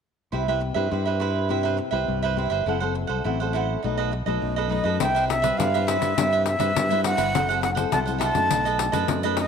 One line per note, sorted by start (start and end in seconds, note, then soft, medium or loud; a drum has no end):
0.32 0.70 C2 medium
0.32 0.89 C3 medium
0.32 0.42 B3 medium
0.32 0.46 E4 soft
0.32 0.42 E4 medium
0.32 0.42 G4 medium
0.32 0.47 B4 soft
0.32 0.46 C5 soft
0.32 0.47 E5 soft
0.47 0.72 B3 medium
0.47 0.72 E4 medium
0.47 0.73 G4 medium
0.47 0.60 B4 medium
0.47 0.59 C5 soft
0.47 0.60 E5 medium
0.60 muted cavaquinho stroke soft
0.74 0.88 G2 medium
0.74 0.86 B3 medium
0.74 0.86 E4 medium
0.74 0.87 G4 medium
0.74 0.90 B4 medium
0.74 0.90 C5 medium
0.74 0.89 E5 medium
0.91 1.47 G2 medium
0.91 1.79 G2 medium
0.91 1.45 B3 soft
0.91 1.05 E4 soft
0.91 1.45 E4 medium
0.91 1.45 G4 medium
0.91 1.06 B4 soft
0.91 1.05 C5 soft
0.91 1.04 E5 soft
1.05 1.20 B4 soft
1.05 1.19 C5 medium
1.05 1.19 E5 medium
1.20 1.48 E4 medium
1.20 1.49 B4 medium
1.20 1.48 C5 medium
1.20 1.49 E5 medium
1.49 2.05 C3 medium
1.49 1.89 B3 medium
1.49 1.63 E4 soft
1.49 1.89 E4 medium
1.49 1.89 G4 medium
1.49 1.64 B4 medium
1.49 1.64 C5 medium
1.49 1.62 E5 medium
1.63 1.77 B4 medium
1.63 1.76 C5 medium
1.63 1.77 E5 medium
1.77 muted cavaquinho stroke soft
1.91 2.05 C2 medium
1.91 2.32 B3 medium
1.91 2.32 E4 medium
1.91 2.32 G4 medium
1.91 2.21 B4 medium
1.91 2.22 C5 soft
1.91 2.20 E5 medium
2.07 2.46 C2 medium
2.07 2.63 G2 medium
2.22 2.37 B4 medium
2.22 2.37 C5 medium
2.22 2.36 E5 medium
2.36 2.64 B3 medium
2.36 2.64 E4 medium
2.36 2.51 E4 soft
2.36 2.64 G4 medium
2.36 2.50 B4 medium
2.36 2.51 C5 soft
2.36 2.49 E5 soft
2.50 2.64 G1 medium
2.50 2.65 B4 medium
2.50 2.66 C5 medium
2.50 2.65 E5 medium
2.66 3.04 F#1 medium
2.66 3.22 F#3 medium
2.66 2.76 C4 medium
2.66 2.80 E4 soft
2.66 2.76 E4 medium
2.66 2.80 A4 soft
2.66 2.76 A4 medium
2.66 2.80 C5 soft
2.66 2.79 F#5 soft
2.80 3.21 C4 medium
2.80 3.21 E4 medium
2.80 2.94 A4 medium
2.80 3.21 A4 medium
2.80 2.94 C5 medium
2.80 2.94 F#5 medium
2.95 muted cavaquinho stroke soft
3.07 3.23 C2 medium
3.07 3.24 A4 medium
3.07 3.23 C5 medium
3.07 3.23 F#5 medium
3.24 3.75 A1 medium
3.24 3.81 F#3 medium
3.24 3.79 C4 medium
3.24 3.38 E4 soft
3.24 3.79 E4 medium
3.24 3.39 A4 soft
3.24 3.79 A4 medium
3.24 3.39 C5 soft
3.24 3.39 F#5 soft
3.40 3.53 A4 soft
3.40 3.54 C5 medium
3.40 3.53 F#5 medium
3.53 3.82 E4 medium
3.53 3.83 A4 medium
3.53 3.83 C5 medium
3.53 3.83 F#5 medium
3.83 4.21 B1 medium
3.83 4.39 B2 medium
3.83 4.11 F#3 medium
3.83 4.12 A3 medium
3.83 3.97 D#4 soft
3.83 4.12 D#4 medium
3.83 3.97 A4 soft
3.83 3.97 B4 medium
3.83 3.96 D#5 medium
3.98 4.11 A4 medium
3.98 4.12 B4 medium
3.98 4.11 D#5 medium
4.12 muted cavaquinho stroke soft
4.26 4.39 B1 medium
4.26 4.66 F#3 medium
4.26 4.66 A3 medium
4.26 4.66 D#4 medium
4.26 4.56 A4 medium
4.26 4.55 B4 medium
4.26 4.55 D#5 medium
4.42 4.79 B1 medium
4.42 4.98 F#2 medium
4.56 4.69 A4 medium
4.56 4.69 B4 medium
4.56 4.70 D#5 medium
4.69 4.98 F#3 medium
4.69 4.98 A3 medium
4.69 4.84 D#4 soft
4.69 4.98 D#4 medium
4.69 4.84 A4 soft
4.69 4.84 B4 soft
4.69 4.98 D#5 medium
4.69 4.83 D#5 medium
4.84 4.98 F#2 medium
4.84 5.00 A4 soft
4.84 4.99 B4 medium
4.84 4.98 D#5 medium
5.00 5.50 C2 medium
5.00 5.56 C3 medium
5.00 5.40 G3 medium
5.00 5.40 B3 medium
5.00 5.14 E4 soft
5.00 5.40 E4 medium
5.00 5.14 B4 medium
5.00 5.14 C5 soft
5.00 5.13 E5 soft
5.00 5.28 G5 medium
5.00 pandeiro medium
5.15 5.28 B4 medium
5.15 5.28 C5 medium
5.15 5.28 E5 medium
5.15 pandeiro soft
5.28 5.59 E5 medium
5.28 muted cavaquinho stroke soft
5.28 pandeiro medium
5.42 5.68 G3 medium
5.42 5.69 B3 medium
5.42 5.69 E4 medium
5.42 5.57 B4 medium
5.42 5.58 C5 soft
5.42 5.57 E5 medium
5.42 pandeiro medium
5.58 5.96 G2 medium
5.58 6.15 G2 medium
5.58 5.72 E4 soft
5.58 5.73 B4 soft
5.58 5.73 C5 soft
5.58 5.73 E5 soft
5.58 5.89 F5 medium
5.58 pandeiro medium
5.74 6.14 G3 medium
5.74 6.14 B3 medium
5.74 6.14 E4 medium
5.74 5.88 B4 medium
5.74 5.87 C5 medium
5.74 5.87 E5 medium
5.74 pandeiro soft
5.87 6.16 E4 medium
5.87 6.17 B4 medium
5.87 6.16 C5 medium
5.87 6.46 E5 medium
5.87 6.17 E5 medium
5.87 pandeiro medium
6.02 6.15 G2 medium
6.02 pandeiro medium
6.17 6.55 G2 medium
6.17 6.74 C3 medium
6.17 6.46 G3 soft
6.17 6.46 B3 medium
6.17 6.31 E4 medium
6.17 6.46 E4 medium
6.17 6.32 B4 medium
6.17 6.32 C5 medium
6.17 6.31 E5 medium
6.17 pandeiro medium
6.33 6.46 B4 medium
6.33 6.46 C5 medium
6.33 6.46 E5 medium
6.33 pandeiro soft
6.46 7.01 E5 medium
6.46 muted cavaquinho stroke soft
6.46 pandeiro medium
6.59 6.73 G2 medium
6.59 6.85 G3 medium
6.59 6.86 B3 medium
6.59 6.86 E4 medium
6.59 6.89 B4 medium
6.59 6.89 C5 soft
6.59 6.88 E5 medium
6.59 pandeiro medium
6.76 7.13 G2 medium
6.76 7.32 G2 medium
6.76 pandeiro medium
6.90 7.30 G3 medium
6.90 7.30 B3 medium
6.90 7.30 E4 medium
6.90 7.05 B4 medium
6.90 7.04 C5 medium
6.90 7.04 E5 medium
6.90 pandeiro soft
7.04 7.18 E4 medium
7.04 7.17 B4 soft
7.04 7.19 C5 soft
7.04 7.16 E5 medium
7.04 7.59 F#5 loud
7.04 pandeiro medium
7.17 7.35 G1 medium
7.17 7.32 B4 medium
7.17 7.33 C5 medium
7.17 7.32 E5 medium
7.17 pandeiro medium
7.34 7.84 F#1 medium
7.34 7.90 F#3 medium
7.34 7.73 C4 medium
7.34 7.47 E4 soft
7.34 7.74 E4 medium
7.34 7.48 A4 soft
7.34 7.74 A4 medium
7.34 7.48 C5 medium
7.34 7.48 F#5 soft
7.34 pandeiro medium
7.49 7.61 A4 medium
7.49 7.61 C5 medium
7.49 7.62 F#5 medium
7.49 pandeiro soft
7.61 7.70 F#5 medium
7.61 muted cavaquinho stroke soft
7.61 pandeiro medium
7.75 8.02 C4 medium
7.75 8.02 E4 medium
7.75 7.91 A4 medium
7.75 8.03 A4 medium
7.75 7.90 C5 medium
7.75 7.90 F#5 medium
7.75 pandeiro medium
7.92 8.30 C2 medium
7.92 8.35 F#3 medium
7.92 8.06 E4 soft
7.92 8.06 A4 soft
7.92 8.06 C5 soft
7.92 8.04 F#5 soft
7.92 7.99 A5 medium
7.92 pandeiro medium
8.06 8.32 C4 medium
8.06 8.32 E4 medium
8.06 8.18 A4 medium
8.06 8.32 A4 medium
8.06 8.19 C5 medium
8.06 8.20 F#5 medium
8.06 pandeiro soft
8.18 8.48 E4 medium
8.18 8.49 A4 medium
8.18 8.49 C5 medium
8.18 8.49 F#5 medium
8.18 9.08 A5 medium
8.18 pandeiro medium
8.35 8.48 F#2 medium
8.35 8.90 F#3 medium
8.35 8.90 A3 medium
8.35 8.90 D#4 medium
8.35 pandeiro medium
8.50 8.88 B1 medium
8.50 9.07 B2 medium
8.50 8.64 D#4 soft
8.50 8.64 A4 soft
8.50 8.65 B4 soft
8.50 8.64 D#5 medium
8.50 pandeiro medium
8.65 8.78 A4 medium
8.65 8.79 B4 medium
8.65 8.79 D#5 medium
8.65 pandeiro soft
8.79 muted cavaquinho stroke soft
8.79 pandeiro medium
8.92 9.06 F#2 medium
8.92 9.19 F#3 medium
8.92 9.19 A3 medium
8.92 9.19 D#4 medium
8.92 9.23 A4 soft
8.92 9.22 B4 medium
8.92 9.21 D#5 medium
8.92 pandeiro medium
9.08 9.46 F#2 medium
9.08 9.47 F#2 soft
9.08 pandeiro medium
9.23 9.47 F#3 medium
9.23 9.47 A3 medium
9.23 9.47 D#4 medium
9.23 9.36 A4 medium
9.23 9.37 B4 medium
9.23 9.37 D#5 medium
9.23 pandeiro soft
9.37 9.47 D#4 soft
9.37 9.47 A4 medium
9.37 9.47 B4 medium
9.37 9.47 D#5 medium
9.37 pandeiro medium